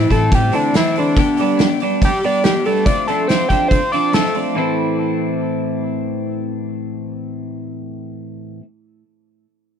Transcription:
Already playing: E3 A3 E4
0.09 A2 E3 A3 C4 E4 A4, kick, open hi-hat
0.32 A2 G4, kick, open hi-hat
0.52 E3 A3 C4 D4 E4 A4, open hi-hat
0.73 E3 A3 C4 E4, snare, open hi-hat
0.87 snare
0.96 E3 C4 D4 E4 A4, open hi-hat
1.17 B3 D4 G4, kick, open hi-hat
1.36 D4 G4, open hi-hat
1.41 G3 B3 D4
1.57 B3 D4 G4, snare, open hi-hat
1.80 G3 B3 D4 G4, open hi-hat
2.02 G4, kick, open hi-hat
2.21 G3 B3 D4 G4, open hi-hat
2.25 D5
2.44 B3 D4 G4, snare, open hi-hat
2.65 G3 B3 D4 G4 A4, open hi-hat
2.86 A3 C4 F4 D5, kick, open hi-hat
3.07 F3 C4 D4 F4 A4, open hi-hat
3.27 A3 C4 F4 C5, snare, open hi-hat
3.49 F3 C4 D4 F4 A4 G5, kick, open hi-hat
3.68 C5, kick, open hi-hat
3.91 F3 C4 D4 F4 A4 D5, open hi-hat
4.13 A3 C4 F4 A4, snare, open hi-hat
4.25 snare
4.35 F3 C4 D4 A4, open hi-hat
4.54 A2 E3 A3 C4 E4
4.59 C4 A4

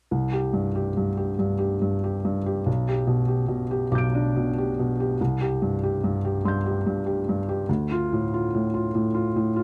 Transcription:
0.11 C2
0.32 G4
0.53 G2
0.75 G4
0.97 G2
1.17 G4
1.39 G2
1.59 G4
1.81 G2
2.04 G4
2.25 G2
2.46 G4
2.66 B1
2.88 G4
3.07 B2
3.28 G4
3.48 B2
3.71 G4
3.91 B1 D6 G6
3.98 D7
4.15 D4
4.36 B2
4.58 G4
4.79 B2
5.00 G4
5.21 C2
5.41 G4
5.62 G2
5.83 G4
6.04 G2
6.25 G4
6.45 G2 C6 G6
6.66 G4
6.86 G2
7.06 G4
7.29 G2
7.49 G4
7.69 D2
7.91 F4
8.13 A2
8.34 F4
8.54 A2
8.74 F4
8.95 A2
9.15 F4
9.36 A2
9.56 F4

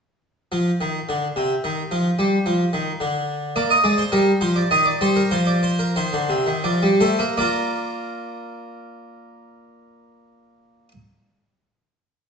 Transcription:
0.52 F3
0.81 D#3
1.09 D3
1.36 C3
1.64 D#3
1.91 F3
2.19 G3
2.46 F3
2.73 D#3
3.00 D3
3.56 A#3 D5
3.70 D#5
3.84 G#3 D5
3.98 C5
4.12 G3 A#4
4.41 F3 C5
4.56 D5
4.71 D#3 D#5
4.85 D5
5.01 G3 C5
5.16 A#4
5.31 F3 C5
5.47 D5
5.63 C5
5.79 A#4
5.96 D#3 C5
6.13 D3
6.29 C3
6.47 D#3
6.64 F3 D5
6.83 G3
7.00 A3 C5
7.19 A#3
7.37 A#3 F4 A#4 D5

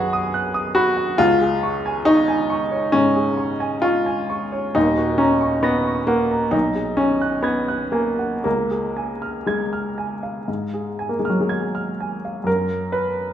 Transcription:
Already playing: F#2 F#4 G#4 B4 F#5 B5 D#6 F#6
0.13 D#6
0.34 F#6
0.54 D#6
0.75 F#4 B5
0.97 F#5
1.18 C#2 F4
1.41 G#4
1.63 C#6
1.86 G#5
2.05 D#4 C#6
2.28 G#5
2.50 C#6
2.72 C#5
2.92 G#2 C#4
3.16 G#4
3.38 C#6
3.60 G#5
3.82 F4 C#6
4.06 G#5
4.30 C#6
4.52 C#5
4.75 D#1 D#2 D#4
4.98 F#4
5.18 C#4 A#5
5.41 C#6
5.63 B3 A#6
5.85 C#6
6.07 A#3 F#5
6.31 A#5
6.51 B1 D#4
6.75 G#4
6.97 C#4 G#5
7.22 F#6
7.43 B3 G#6
7.68 F#6
7.92 A#3 G#5
8.19 F#5
8.44 C#2 A#3
8.70 G#4
8.97 G#5
9.22 F6
9.47 G#3 G#6
9.73 F6
9.98 G#5
10.23 F5
10.48 G#2
10.74 G#4
10.99 G#5
11.09 A#3
11.19 G#3
11.25 F6
11.29 F#3
11.40 G#3
11.49 G#6
11.75 F6
12.00 G#5
12.25 F5
12.44 F#2 A#4
12.92 B4

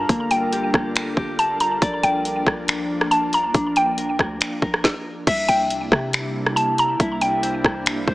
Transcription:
Already playing: G3 D4 F4 A4 A#4
0.09 G1 A#3, kick, closed hi-hat
0.31 G5, closed hi-hat
0.53 G4, closed hi-hat
0.74 G1, kick, cross-stick
0.96 finger snap, closed hi-hat
1.17 G1 G4, kick
1.39 A5, closed hi-hat
1.60 A#5, closed hi-hat
1.82 A#1 F3 A#3 D4 D5, kick, closed hi-hat
2.03 A#1 G5, closed hi-hat
2.25 closed hi-hat
2.47 A#1, kick, cross-stick
2.68 finger snap, closed hi-hat
3.01 cross-stick
3.11 A5, closed hi-hat
3.33 A#5, closed hi-hat
3.54 A#1 D4, kick, closed hi-hat
3.76 G5, closed hi-hat
3.98 A#4, closed hi-hat
4.19 D2, kick, cross-stick
4.41 finger snap, closed hi-hat
4.62 A#1 A#4, kick
4.74 cross-stick
4.84 kick, snare
5.27 C2 C3 G3 A#3 D4 E4 E5, kick, closed hi-hat, crash
5.48 C2 G5, closed hi-hat
5.70 closed hi-hat
5.92 C3, kick, cross-stick
6.13 finger snap, closed hi-hat
6.46 cross-stick
6.56 A5, closed hi-hat
6.78 A#5, closed hi-hat
7.00 C2 E4, kick, closed hi-hat
7.21 G5, closed hi-hat
7.43 C5, closed hi-hat
7.64 C2, kick, cross-stick
7.86 finger snap, closed hi-hat
8.07 C2 C5, kick

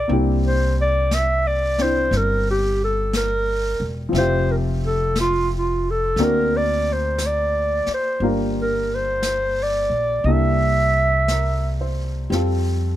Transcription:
Already playing: C4 G4 A4 D5
0.08 C2 A#3 C4 D4 E4, brush sweep
0.13 G4
0.46 C5
0.81 D5
1.11 E5, brush sweep, snare, hi-hat pedal
1.47 D5
1.78 C4 D4 E4 C5, snare
2.11 G1, brush sweep, snare
2.17 A#4
2.50 G4
2.84 A4
3.13 A#4, brush sweep, snare, hi-hat pedal
3.80 E1
4.09 F3 C4
4.13 F1 E5, brush sweep, snare
4.17 F4 G4 C5
4.52 A#4
4.86 A4
5.16 brush sweep, snare, hi-hat pedal
5.20 F4
5.57 F4
5.91 A4
6.16 D2 A#3 C4 D4 F#4 A#4, brush sweep, snare
6.24 A#4
6.57 D5
6.93 C5
7.18 brush sweep, snare, hi-hat pedal
7.27 D5
7.86 muted upright bass stroke, snare
7.94 C5
8.20 G1 G3 A#3 D4 F4 A#4, brush sweep
8.62 A#4
8.95 C5
9.23 brush sweep, snare, hi-hat pedal
9.63 D5
9.90 A#1
10.24 C2 G3 A#3 D4 E4 A4 D#5, brush sweep
10.32 E5
11.28 A#4, brush sweep, snare, hi-hat pedal
11.81 C5
12.30 F2 G3 C4 F4, brush sweep, snare
12.35 A4

